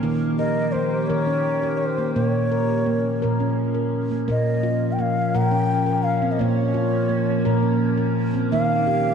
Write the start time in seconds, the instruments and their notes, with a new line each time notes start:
Already playing: ambient pad A#3
0.02 ambient pad D#3 G4, handpan D#3 A#3
0.38 handpan A#4, bansuri D#5
0.72 handpan A#3, bansuri C5
1.06 handpan D#3 A#4, bansuri C#5
1.27 handpan C#4
1.63 handpan A#4
1.78 bansuri C5
1.98 handpan A#3
2.14 handpan A#2 A#3, ambient pad F3 C#4, bansuri C#5
2.52 handpan A#4
2.86 handpan A#3
3.22 handpan A#2 A#4
3.40 handpan C#4
3.75 handpan A#4
4.11 handpan A#3
4.28 handpan A#2 A#3, ambient pad F3 A#3 C#4, bansuri D#5
4.63 handpan F4
4.92 bansuri G5
4.99 handpan A#3, bansuri F5
5.35 handpan A#2 A#4, bansuri G5
5.51 handpan C#4
5.86 handpan A#4
6.04 bansuri F5
6.22 handpan C4
6.32 bansuri D#5
6.39 handpan A#2 A#3, bansuri C#5
6.74 handpan F4
7.09 handpan A#3
7.45 handpan A#2 A#4
7.63 handpan C#4
7.97 handpan A#4
8.34 handpan C4
8.51 ambient pad D#3 G4, handpan D#3 A#3, bansuri F5
8.87 handpan G4